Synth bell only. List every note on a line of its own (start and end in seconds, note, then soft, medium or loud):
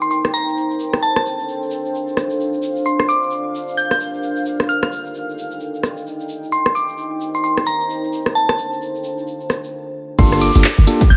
0.02 0.08 C6 medium
0.11 0.20 C6 medium
0.34 0.49 A#5 medium
1.03 1.11 A5 medium
1.16 1.22 A5 medium
2.86 2.95 C6 medium
3.00 3.05 C6 medium
3.09 3.24 D6 medium
3.77 3.86 G6 medium
3.91 3.97 G6 medium
4.69 4.78 F6 medium
4.83 4.89 F6 medium
6.52 6.61 C6 medium
6.66 6.72 C6 medium
6.75 6.91 D6 medium
7.35 7.41 C6 medium
7.44 7.53 C6 medium
7.67 7.82 A#5 medium
8.35 8.44 A5 medium
8.49 8.55 A5 medium
10.19 10.27 C6 medium
10.32 10.38 C6 medium
10.41 10.57 D6 medium
11.10 11.17 G6 medium